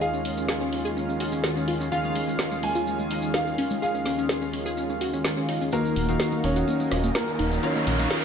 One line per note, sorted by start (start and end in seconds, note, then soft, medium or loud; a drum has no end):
0.00 5.69 D#2 medium
0.00 1.89 D#3 medium
0.00 5.69 D#3 medium
0.00 5.69 G#3 medium
0.00 1.89 C#4 medium
0.00 5.69 C#4 medium
0.00 1.89 F4 medium
0.00 5.69 F4 medium
0.00 1.89 G#4 medium
0.00 0.08 G#4 loud
0.00 1.89 F5 medium
0.00 1.83 F5 medium
0.00 shaker medium
0.14 0.20 C#4 medium
0.14 shaker soft
0.25 0.32 C#4 medium
0.25 open hi-hat medium
0.37 0.44 C#4 medium
0.37 shaker medium
0.49 0.55 G#4 medium
0.49 snare loud
0.49 shaker medium
0.61 0.67 C#4 medium
0.61 shaker soft
0.73 0.79 C#4 medium
0.73 open hi-hat loud
0.85 0.91 G#4 medium
0.85 shaker medium
0.97 1.03 C#4 medium
0.97 shaker medium
1.09 1.15 C#4 medium
1.09 shaker soft
1.20 1.27 F#4 medium
1.20 open hi-hat loud
1.32 1.39 C#4 medium
1.32 shaker medium
1.44 1.51 F#4 medium
1.44 snare loud
1.44 shaker medium
1.56 1.63 C#4 medium
1.56 shaker soft
1.68 1.75 F4 medium
1.68 open hi-hat loud
1.80 1.86 C#4 medium
1.80 shaker medium
1.92 5.70 D#3 medium
1.92 5.70 C#4 medium
1.92 1.98 F4 loud
1.92 5.70 F4 medium
1.92 5.70 G#4 medium
1.92 2.54 F5 medium
1.92 5.70 F5 medium
1.92 shaker medium
2.04 2.10 G#3 medium
2.04 shaker soft
2.15 2.22 G#3 medium
2.15 open hi-hat medium
2.28 2.34 G#3 medium
2.28 shaker medium
2.39 2.46 F4 medium
2.39 snare loud
2.39 shaker medium
2.51 2.58 G#3 medium
2.51 shaker soft
2.63 2.70 G#3 medium
2.63 3.25 G#5 medium
2.63 open hi-hat loud
2.75 2.82 F4 medium
2.75 shaker medium
2.87 2.93 G#3 medium
2.87 shaker medium
2.99 3.05 G#3 medium
2.99 shaker soft
3.11 3.17 D#4 medium
3.11 open hi-hat medium
3.22 3.29 G#3 medium
3.22 shaker medium
3.34 3.41 D#4 medium
3.34 3.78 F5 medium
3.34 snare loud
3.34 shaker medium
3.47 3.53 G#3 medium
3.47 shaker soft
3.58 3.65 C#4 medium
3.58 open hi-hat medium
3.70 3.77 G#3 medium
3.70 shaker medium
3.82 3.89 G#4 loud
3.82 5.63 F5 medium
3.82 shaker medium
3.94 4.01 C#4 medium
3.94 shaker soft
4.06 4.13 C#4 medium
4.06 snare soft
4.06 open hi-hat medium
4.18 4.24 C#4 medium
4.18 shaker medium
4.29 4.36 G#4 medium
4.29 snare loud
4.29 shaker medium
4.42 4.48 C#4 medium
4.42 shaker soft
4.53 4.60 C#4 medium
4.53 open hi-hat loud
4.66 4.72 G#4 medium
4.66 shaker medium
4.77 4.84 C#4 medium
4.77 shaker medium
4.89 4.96 C#4 medium
4.89 shaker soft
5.01 5.08 F#4 medium
5.01 open hi-hat loud
5.13 5.20 C#4 medium
5.13 shaker medium
5.25 5.32 F4 medium
5.25 snare loud
5.25 shaker medium
5.37 5.43 C#4 medium
5.37 shaker soft
5.49 5.55 D#4 medium
5.49 open hi-hat loud
5.61 5.67 C#4 medium
5.61 shaker medium
5.72 8.25 D#3 medium
5.72 6.06 D#3 medium
5.72 6.35 A#3 medium
5.72 8.25 D#4 medium
5.72 6.06 D#4 medium
5.72 8.25 F#4 medium
5.72 5.79 F#4 loud
5.72 6.06 F#4 medium
5.72 8.25 A#4 medium
5.72 6.06 A#4 medium
5.72 6.35 A#4 medium
5.72 8.25 D#5 medium
5.72 6.06 F5 medium
5.72 closed hi-hat medium
5.72 riser medium
5.72 shaker medium
5.85 5.91 A#3 medium
5.85 closed hi-hat soft
5.85 shaker soft
5.96 6.16 D#1 medium
5.96 6.03 A#3 medium
5.96 open hi-hat loud
6.09 7.60 D#3 medium
6.09 6.15 A#3 medium
6.09 7.60 D#4 medium
6.09 7.60 F#4 medium
6.09 7.60 A#4 medium
6.09 7.60 F5 loud
6.09 closed hi-hat medium
6.09 shaker medium
6.20 6.27 F#4 medium
6.20 snare loud
6.20 closed hi-hat medium
6.20 shaker medium
6.32 6.39 A#3 medium
6.32 closed hi-hat soft
6.32 shaker soft
6.44 6.63 D#1 loud
6.44 6.51 A#3 medium
6.44 7.06 C#4 medium
6.44 7.06 C#5 medium
6.44 open hi-hat loud
6.56 6.62 F#4 medium
6.56 closed hi-hat medium
6.56 shaker medium
6.68 6.74 A#3 medium
6.68 closed hi-hat medium
6.68 shaker medium
6.80 6.86 A#3 medium
6.80 closed hi-hat soft
6.80 shaker soft
6.92 7.11 D#1 medium
6.92 6.98 F4 medium
6.92 cross-stick medium
6.92 open hi-hat loud
7.03 7.10 A#3 medium
7.03 closed hi-hat medium
7.03 shaker medium
7.15 7.59 A#3 medium
7.15 7.22 F4 medium
7.15 7.59 A#4 medium
7.15 snare loud
7.15 closed hi-hat medium
7.15 shaker medium
7.28 7.34 A#3 medium
7.28 closed hi-hat soft
7.28 shaker soft
7.39 7.59 D#1 loud
7.39 7.46 D#4 medium
7.39 open hi-hat medium
7.52 7.58 A#3 medium
7.52 closed hi-hat soft
7.52 shaker medium
7.63 7.96 D#3 medium
7.63 8.25 C#4 medium
7.63 7.96 D#4 medium
7.63 7.70 F4 loud
7.63 7.96 F#4 medium
7.63 7.96 A#4 medium
7.63 8.25 C#5 medium
7.63 7.96 F5 medium
7.63 closed hi-hat medium
7.63 shaker medium
7.75 7.82 A#3 medium
7.75 closed hi-hat soft
7.75 shaker soft
7.87 8.06 A#1 medium
7.87 7.93 A#3 medium
7.87 open hi-hat loud
7.99 8.25 D#3 medium
7.99 8.05 A#3 medium
7.99 8.25 D#4 medium
7.99 8.25 F#4 medium
7.99 8.25 A#4 medium
7.99 8.25 F5 medium
7.99 closed hi-hat medium
7.99 shaker medium
8.10 8.17 F4 medium
8.10 snare loud
8.10 closed hi-hat medium
8.10 shaker medium